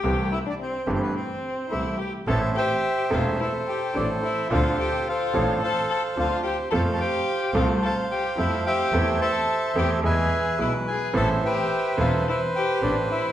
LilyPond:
<<
  \new Staff \with { instrumentName = "Bandoneon" } { \time 4/4 \key c \major \tempo 4 = 108 << { g''8 e''16 d''16 c''8 b'32 c''32 b'16 c''4 e''8 g''8 | \key a \minor a''8 g''4 f''8 e''8 g''8 d''8 e''8 | f''8 g''8 f''4 a''8 a''8 f''8 g''8 | a''16. a''32 g''4 f''8 a''8 g''8 e''8 g''8~ |
g''8 a''4 g''8 gis''4 e''8 gis''8 | a''8 g''4 f''8 e''8 g''8 d''8 e''8 | } \\ { r1 | <c'' e''>8 <c'' e''>4. <a' c''>2 | <a' c''>4 <a' c''>4 <c'' f''>2 | <c'' f''>8 c''4. <c'' f''>4. <c'' e''>8~ |
<c'' e''>8 <c'' e''>4. <b' e''>2 | <c'' e''>8 <b' c''>4. <b' c''>2 | } >> }
  \new Staff \with { instrumentName = "Violin" } { \time 4/4 \key c \major g'8 e'16 d'16 c'8 b32 c'32 b16 c'4 e'8 g'8 | \key a \minor a'8 g'4 f'8 e'8 g'8 d'8 e'8 | f'8 g'8 f'4 a'8 a'8 f'8 g'8 | a'16. a'32 g'4 f'8 a'8 g'8 e'8 g'8~ |
g'8 a'4 g'8 gis'4 e'8 gis'8 | a'8 g'4 f'8 e'8 g'8 d'8 e'8 | }
  \new Staff \with { instrumentName = "Grand piano" } { \time 4/4 \key c \major <c, c e a c' g'>8 r4 <g,, g, e a c' g'>8 r4 <c, c e a c' g'>8 r8 | \key a \minor <a,, a, e a c' a'>8 r4 <e,, e, e a c' a'>8 r4 <a,, a, e a c' a'>8 r8 | <d, d f c' d' a'>8 r4 <a,, a, f c' d' a'>8 r4 <d, d f c' d' a'>8 r8 | <f, f a c' a'>8 r4 <c, c f a c' a'>8 r4 <f, f a c' a'>8 r8 |
<e, e a c' a'>8 r4 <e, e a c' a'>8 <e, e gis b gis'>8 r8 <b,, b, e gis b gis'>8 r8 | <a,, a, e b c' a'>8 r4 <e,, e, e b c' a'>8 r4 <a,, a, e b c' a'>8 r8 | }
  \new Staff \with { instrumentName = "Double bass" } { \clef bass \time 4/4 \key c \major c,8 r4 g,,8 r4 c,8 r8 | \key a \minor a,,8 r4 e,,8 r4 a,,8 r8 | d,8 r4 a,,8 r4 d,8 r8 | f,8 r4 c,8 r4 f,8 r8 |
e,8 r4 e,8 e,8 r8 b,,8 r8 | a,,8 r4 e,,8 r4 a,,8 r8 | }
>>